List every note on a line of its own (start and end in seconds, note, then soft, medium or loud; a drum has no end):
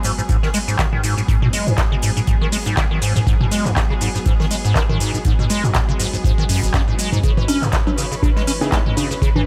0.00 7.19 F#3 medium
0.00 7.23 G#3 medium
0.00 7.19 B3 medium
0.00 9.46 F#4 medium
0.00 7.19 G#4 medium
0.00 9.46 B4 medium
0.00 0.89 C#5 medium
0.00 9.46 D#5 medium
0.00 closed hi-hat medium
0.04 0.12 G#2 medium
0.04 open hi-hat medium
0.04 shaker medium
0.18 0.22 G#2 medium
0.18 shaker soft
0.29 0.37 G#2 medium
0.29 kick loud
0.29 closed hi-hat medium
0.29 shaker soft
0.43 0.49 D#3 loud
0.43 snare soft
0.54 0.59 G#3 medium
0.54 closed hi-hat medium
0.54 open hi-hat loud
0.54 shaker medium
0.68 0.77 G#2 medium
0.68 shaker soft
0.79 0.86 D#3 loud
0.79 kick loud
0.79 snare loud
0.79 clap loud
0.79 closed hi-hat medium
0.79 shaker soft
0.93 1.02 D#3 medium
0.93 mid tom medium
1.04 1.15 G#2 medium
1.04 closed hi-hat medium
1.04 open hi-hat medium
1.04 shaker medium
1.17 1.21 G#2 medium
1.17 shaker soft
1.28 1.36 G#2 loud
1.28 kick loud
1.28 closed hi-hat medium
1.28 shaker soft
1.42 1.48 B2 loud
1.42 mid tom medium
1.53 1.69 G#3 loud
1.53 closed hi-hat medium
1.53 open hi-hat loud
1.53 shaker medium
1.67 1.73 F#2 loud
1.67 mid tom medium
1.67 shaker soft
1.78 1.83 G#2 medium
1.78 kick loud
1.78 snare loud
1.78 clap loud
1.78 closed hi-hat medium
1.78 shaker soft
1.92 1.95 C#3 loud
2.02 2.10 G#2 medium
2.02 closed hi-hat medium
2.02 open hi-hat medium
2.02 shaker medium
2.17 2.20 G#2 medium
2.17 shaker soft
2.27 2.35 G#2 medium
2.27 kick loud
2.27 closed hi-hat medium
2.27 shaker soft
2.41 2.47 D#3 loud
2.52 2.57 G#3 medium
2.52 open hi-hat medium
2.52 open hi-hat loud
2.52 shaker medium
2.65 2.75 G#2 medium
2.65 closed hi-hat soft
2.65 shaker soft
2.77 2.85 D#3 loud
2.77 kick loud
2.77 snare loud
2.77 clap loud
2.77 closed hi-hat medium
2.77 shaker soft
2.91 3.00 D#3 medium
3.02 3.13 G#2 medium
3.02 closed hi-hat medium
3.02 open hi-hat medium
3.02 shaker medium
3.16 3.19 G#2 medium
3.16 mid tom medium
3.16 shaker soft
3.27 3.34 G#2 medium
3.27 kick loud
3.27 closed hi-hat medium
3.27 shaker soft
3.41 3.47 B2 loud
3.41 mid tom medium
3.51 3.67 G#3 loud
3.51 closed hi-hat medium
3.51 open hi-hat loud
3.51 shaker medium
3.65 3.71 F#2 loud
3.65 clap soft
3.65 mid tom loud
3.65 shaker soft
3.76 3.81 G#2 medium
3.76 kick loud
3.76 snare loud
3.76 clap loud
3.76 closed hi-hat medium
3.76 shaker soft
3.90 3.94 C#3 loud
4.01 4.09 G#2 medium
4.01 closed hi-hat medium
4.01 open hi-hat medium
4.01 shaker medium
4.15 4.19 G#2 medium
4.15 shaker soft
4.26 4.34 G#2 medium
4.26 kick loud
4.26 closed hi-hat medium
4.26 shaker soft
4.40 4.46 D#3 loud
4.40 snare soft
4.51 4.55 G#3 medium
4.51 closed hi-hat medium
4.51 open hi-hat loud
4.51 shaker medium
4.65 4.74 G#2 medium
4.65 shaker soft
4.75 4.83 D#3 loud
4.75 kick loud
4.75 snare loud
4.75 clap loud
4.75 closed hi-hat medium
4.75 shaker soft
4.89 4.98 D#3 medium
4.89 mid tom medium
5.00 5.12 G#2 medium
5.00 closed hi-hat medium
5.00 open hi-hat medium
5.00 shaker medium
5.14 5.18 G#2 medium
5.14 shaker soft
5.25 5.33 G#2 loud
5.25 kick loud
5.25 closed hi-hat medium
5.25 shaker soft
5.39 5.45 B2 loud
5.39 mid tom medium
5.50 5.65 G#3 loud
5.50 closed hi-hat medium
5.50 open hi-hat loud
5.50 shaker medium
5.64 5.70 F#2 loud
5.64 mid tom medium
5.64 shaker soft
5.74 5.79 G#2 medium
5.74 kick loud
5.74 snare loud
5.74 clap loud
5.74 closed hi-hat medium
5.74 shaker soft
5.89 5.92 C#3 loud
5.99 6.07 G#2 medium
5.99 closed hi-hat medium
5.99 open hi-hat medium
5.99 shaker medium
6.13 6.17 G#2 medium
6.13 shaker soft
6.24 6.32 G#2 medium
6.24 kick loud
6.24 closed hi-hat medium
6.24 shaker soft
6.38 6.44 D#3 loud
6.49 6.61 F#2 loud
6.49 open hi-hat loud
6.49 open hi-hat medium
6.49 shaker medium
6.63 6.69 G#1 loud
6.63 closed hi-hat soft
6.63 shaker soft
6.74 6.81 F#2 loud
6.74 kick loud
6.74 snare loud
6.74 clap loud
6.74 closed hi-hat medium
6.74 shaker soft
6.88 6.94 G#2 medium
6.99 7.10 G#3 medium
6.99 closed hi-hat medium
6.99 open hi-hat medium
6.99 shaker medium
7.12 7.18 G#2 loud
7.12 mid tom medium
7.12 shaker soft
7.23 7.31 C#3 loud
7.23 9.46 E3 medium
7.23 9.46 C#4 medium
7.23 9.46 B4 medium
7.23 kick loud
7.23 closed hi-hat medium
7.23 shaker soft
7.37 7.43 E3 loud
7.37 mid tom medium
7.48 7.64 C#4 loud
7.48 closed hi-hat medium
7.48 open hi-hat loud
7.48 high conga medium
7.48 shaker medium
7.62 7.68 B2 loud
7.62 clap soft
7.62 mid tom medium
7.62 shaker soft
7.72 7.78 C#3 medium
7.72 kick loud
7.72 snare loud
7.72 clap loud
7.72 closed hi-hat medium
7.72 shaker soft
7.87 7.90 F#3 loud
7.87 high conga medium
7.98 8.05 C#3 medium
7.98 closed hi-hat medium
7.98 open hi-hat medium
7.98 shaker medium
8.12 8.15 C#3 medium
8.12 shaker soft
8.23 8.30 C#3 medium
8.23 kick loud
8.23 closed hi-hat medium
8.23 high conga medium
8.23 shaker soft
8.36 8.43 G#3 loud
8.36 snare soft
8.47 8.52 C#4 loud
8.47 closed hi-hat medium
8.47 open hi-hat loud
8.47 shaker medium
8.61 8.70 C#3 medium
8.61 8.75 B3 medium
8.61 8.75 D#4 medium
8.61 8.75 E4 medium
8.61 8.75 G#4 loud
8.61 high conga medium
8.61 shaker soft
8.72 8.80 G#3 loud
8.72 kick loud
8.72 snare loud
8.72 clap loud
8.72 closed hi-hat medium
8.72 shaker soft
8.86 8.95 G#3 medium
8.86 mid tom medium
8.97 9.08 C#3 medium
8.97 closed hi-hat medium
8.97 open hi-hat medium
8.97 high conga medium
8.97 shaker medium
9.11 9.14 C#3 medium
9.11 shaker soft
9.22 9.29 C#3 loud
9.22 kick loud
9.22 closed hi-hat medium
9.22 shaker soft
9.36 9.42 E3 loud
9.36 mid tom medium
9.36 high conga medium